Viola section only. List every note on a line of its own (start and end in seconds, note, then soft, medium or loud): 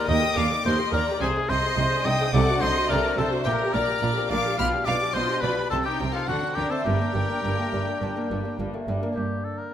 0.08 0.21 A#4 medium
0.22 0.36 G4 medium
0.36 0.51 A#4 medium
0.51 0.65 G4 medium
0.65 0.78 A#4 medium
0.78 0.93 G4 medium
0.93 1.07 A#4 medium
1.07 1.21 G4 medium
1.21 1.34 C5 medium
1.35 1.49 G#4 medium
1.49 1.63 C5 medium
1.63 1.77 G#4 medium
1.77 1.90 C5 medium
1.91 2.05 G#4 medium
2.06 2.20 C5 medium
2.20 2.34 G#4 medium
2.34 2.47 A4 medium
2.48 2.62 F#4 medium
2.63 2.76 A4 medium
2.77 2.90 F#4 medium
2.91 3.04 A4 medium
3.05 3.19 F#4 medium
3.19 3.32 A4 medium
3.32 3.46 F#4 medium
3.47 3.60 A#4 medium
3.62 3.75 G4 medium
3.76 3.89 A#4 medium
3.89 4.03 G4 medium
4.03 4.16 A#4 medium
4.18 4.31 G4 medium
4.31 4.45 A#4 medium
4.45 4.59 G4 medium
4.59 4.72 F4 medium
4.74 4.87 G4 medium
4.88 5.01 F4 medium
5.01 5.15 G4 medium
5.16 5.29 F4 medium
5.31 5.44 G4 medium
5.45 5.58 F4 medium
5.58 5.72 G4 medium
5.72 5.85 C4 medium
5.86 6.00 D#4 medium
6.00 6.14 C4 medium
6.15 6.29 D#4 medium
6.28 6.41 D4 medium
6.42 6.57 C4 medium
6.57 6.71 D4 medium
6.71 6.85 C4 medium
6.85 6.99 G3 medium
6.99 7.14 A#3 medium
7.14 7.29 G3 medium
7.28 7.43 A#3 medium
7.43 7.57 G3 medium
7.58 7.72 A#3 medium
7.72 7.87 G3 medium
7.87 8.01 A#3 medium
8.01 8.15 G3 medium
8.16 8.30 A#3 medium
8.30 8.45 G3 medium
8.44 8.59 A#3 medium
8.59 8.72 G3 medium
8.74 8.88 A#3 medium
8.89 9.02 G3 medium
9.03 9.17 A#3 medium